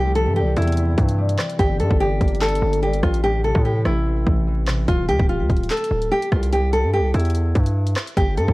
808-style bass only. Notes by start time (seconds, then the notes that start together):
Already playing: C2
0.26 G2
0.41 C2
0.57 E2
0.98 G2
1.59 G1
1.80 G2
1.91 G1
2.21 G1
2.62 G1
3.03 A1
3.55 A2
3.85 A1
4.27 A1
4.88 D1
5.09 D2
5.20 D1
5.40 D2
5.50 D1
5.91 D1
6.32 C2
6.84 G2
6.99 C2
7.14 E2
7.55 G2
8.17 G1
8.37 G2
8.48 G1